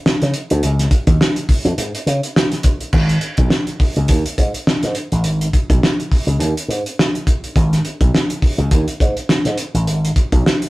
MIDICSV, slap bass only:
0, 0, Header, 1, 3, 480
1, 0, Start_track
1, 0, Tempo, 577478
1, 523, Time_signature, 4, 2, 24, 8
1, 8886, End_track
2, 0, Start_track
2, 0, Title_t, "Slap bass"
2, 0, Program_c, 0, 36
2, 182, Note_on_c, 0, 49, 89
2, 266, Note_off_c, 0, 49, 0
2, 422, Note_on_c, 0, 38, 99
2, 505, Note_off_c, 0, 38, 0
2, 525, Note_on_c, 0, 37, 103
2, 717, Note_off_c, 0, 37, 0
2, 887, Note_on_c, 0, 39, 103
2, 976, Note_off_c, 0, 39, 0
2, 1368, Note_on_c, 0, 41, 106
2, 1456, Note_off_c, 0, 41, 0
2, 1477, Note_on_c, 0, 44, 93
2, 1587, Note_off_c, 0, 44, 0
2, 1716, Note_on_c, 0, 49, 109
2, 1826, Note_off_c, 0, 49, 0
2, 2436, Note_on_c, 0, 32, 112
2, 2631, Note_off_c, 0, 32, 0
2, 2810, Note_on_c, 0, 35, 81
2, 2896, Note_off_c, 0, 35, 0
2, 3293, Note_on_c, 0, 37, 88
2, 3378, Note_off_c, 0, 37, 0
2, 3400, Note_on_c, 0, 39, 106
2, 3508, Note_off_c, 0, 39, 0
2, 3639, Note_on_c, 0, 44, 101
2, 3747, Note_off_c, 0, 44, 0
2, 4015, Note_on_c, 0, 44, 89
2, 4099, Note_off_c, 0, 44, 0
2, 4253, Note_on_c, 0, 33, 94
2, 4361, Note_off_c, 0, 33, 0
2, 4361, Note_on_c, 0, 32, 104
2, 4554, Note_off_c, 0, 32, 0
2, 4734, Note_on_c, 0, 35, 93
2, 4819, Note_off_c, 0, 35, 0
2, 5208, Note_on_c, 0, 37, 77
2, 5295, Note_off_c, 0, 37, 0
2, 5314, Note_on_c, 0, 39, 112
2, 5424, Note_off_c, 0, 39, 0
2, 5555, Note_on_c, 0, 44, 94
2, 5665, Note_off_c, 0, 44, 0
2, 6282, Note_on_c, 0, 32, 117
2, 6475, Note_off_c, 0, 32, 0
2, 6653, Note_on_c, 0, 35, 85
2, 6739, Note_off_c, 0, 35, 0
2, 7131, Note_on_c, 0, 37, 100
2, 7218, Note_off_c, 0, 37, 0
2, 7243, Note_on_c, 0, 39, 108
2, 7351, Note_off_c, 0, 39, 0
2, 7482, Note_on_c, 0, 44, 112
2, 7591, Note_off_c, 0, 44, 0
2, 7855, Note_on_c, 0, 44, 103
2, 7942, Note_off_c, 0, 44, 0
2, 8097, Note_on_c, 0, 33, 102
2, 8200, Note_off_c, 0, 33, 0
2, 8200, Note_on_c, 0, 32, 103
2, 8396, Note_off_c, 0, 32, 0
2, 8579, Note_on_c, 0, 35, 89
2, 8665, Note_off_c, 0, 35, 0
2, 8886, End_track
3, 0, Start_track
3, 0, Title_t, "Muted slap bass strokes"
3, 1238, Note_on_c, 9, 29, 43
3, 1321, Note_off_c, 9, 29, 0
3, 3158, Note_on_c, 9, 29, 41
3, 3241, Note_off_c, 9, 29, 0
3, 5082, Note_on_c, 9, 29, 41
3, 5165, Note_off_c, 9, 29, 0
3, 6999, Note_on_c, 9, 29, 42
3, 7082, Note_off_c, 9, 29, 0
3, 8886, End_track
0, 0, End_of_file